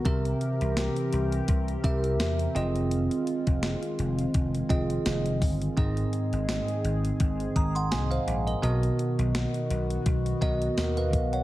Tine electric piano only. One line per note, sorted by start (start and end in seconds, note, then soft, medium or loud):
0.05 1.09 C3 medium
0.05 1.08 C4 medium
0.05 1.08 G4 medium
0.05 1.08 A#4 medium
0.05 1.08 E5 loud
1.84 2.54 C4 medium
1.84 2.56 G4 medium
1.84 2.56 A#4 medium
1.84 2.56 E5 loud
2.55 3.70 C4 medium
2.55 3.71 F4 medium
2.55 3.71 G#4 medium
2.55 3.71 D#5 loud
4.69 5.46 C4 medium
4.69 5.47 F4 medium
4.69 5.47 G#4 medium
4.69 5.47 D#5 loud
5.77 6.80 G#2 medium
5.77 6.79 C4 medium
5.77 6.80 D#4 medium
5.77 6.80 G#4 medium
5.77 6.80 D#5 loud
7.56 7.75 A#5 medium
7.56 7.75 D#6 medium
7.75 7.91 F#5 medium
7.75 7.91 C6 medium
7.91 8.11 D#5 medium
7.91 8.10 G#5 medium
8.11 8.45 C5 medium
8.11 8.45 F5 medium
8.47 8.62 A#4 medium
8.47 8.62 D#5 medium
8.62 9.66 B2 medium
8.62 9.65 B3 medium
8.62 9.65 F#4 medium
8.62 9.65 A#4 medium
8.62 9.66 D#5 loud
10.41 11.18 B3 medium
10.41 11.18 F#4 medium
10.41 10.77 A#4 medium
10.41 10.76 D#5 loud
10.78 10.97 A#4 medium
10.78 10.96 D#5 medium
10.97 11.31 B4 medium
10.97 11.31 F5 medium
11.33 11.43 C#5 medium
11.33 11.43 F#5 medium